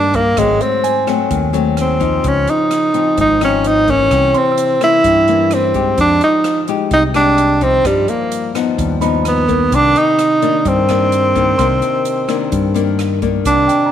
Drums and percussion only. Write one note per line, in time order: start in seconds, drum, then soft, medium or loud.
0.14 kick medium
0.14 closed hi-hat soft
0.37 kick medium
0.37 cross-stick medium
0.37 closed hi-hat soft
0.61 closed hi-hat soft
0.84 closed hi-hat soft
1.08 cross-stick medium
1.08 closed hi-hat soft
1.31 kick medium
1.31 closed hi-hat soft
1.54 closed hi-hat soft
1.77 cross-stick soft
1.77 closed hi-hat soft
2.01 kick medium
2.01 closed hi-hat soft
2.24 kick medium
2.24 closed hi-hat soft
2.47 closed hi-hat soft
2.71 cross-stick medium
2.71 closed hi-hat soft
2.94 closed hi-hat soft
3.18 kick medium
3.18 closed hi-hat soft
3.41 cross-stick medium
3.41 closed hi-hat soft
3.64 closed hi-hat soft
3.88 kick soft
3.88 closed hi-hat soft
4.11 kick medium
4.11 cross-stick medium
4.11 closed hi-hat soft
4.34 closed hi-hat soft
4.58 closed hi-hat soft
4.81 cross-stick medium
4.81 closed hi-hat soft
5.04 kick medium
5.04 closed hi-hat soft
5.28 closed hi-hat soft
5.51 cross-stick medium
5.51 closed hi-hat soft
5.74 kick medium
5.74 closed hi-hat soft
5.98 kick medium
5.98 closed hi-hat soft
6.21 closed hi-hat soft
6.44 cross-stick medium
6.44 closed hi-hat soft
6.68 closed hi-hat soft
6.91 kick medium
6.91 closed hi-hat soft
7.14 cross-stick medium
7.14 closed hi-hat soft
7.38 closed hi-hat soft
7.61 kick medium
7.61 closed hi-hat soft
7.85 kick medium
7.85 cross-stick medium
7.85 closed hi-hat soft
8.08 closed hi-hat soft
8.32 closed hi-hat soft
8.55 cross-stick medium
8.55 closed hi-hat soft
8.78 kick medium
8.78 closed hi-hat soft
9.02 closed hi-hat soft
9.25 cross-stick medium
9.25 closed hi-hat soft
9.49 kick medium
9.49 closed hi-hat soft
9.72 kick medium
9.72 closed hi-hat soft
9.96 closed hi-hat soft
10.19 cross-stick medium
10.19 closed hi-hat soft
10.42 closed hi-hat soft
10.65 kick medium
10.65 closed hi-hat soft
10.89 cross-stick medium
10.89 closed hi-hat soft
11.12 closed hi-hat soft
11.36 kick medium
11.36 closed hi-hat soft
11.59 kick medium
11.59 cross-stick medium
11.59 closed hi-hat soft
11.82 closed hi-hat soft
12.05 closed hi-hat soft
12.29 cross-stick medium
12.29 closed hi-hat soft
12.52 kick medium
12.52 closed hi-hat soft
12.76 closed hi-hat soft
12.99 cross-stick medium
12.99 closed hi-hat soft
13.22 kick medium
13.22 closed hi-hat soft
13.45 kick medium
13.45 closed hi-hat soft
13.45 shaker medium
13.69 closed hi-hat soft
13.69 shaker soft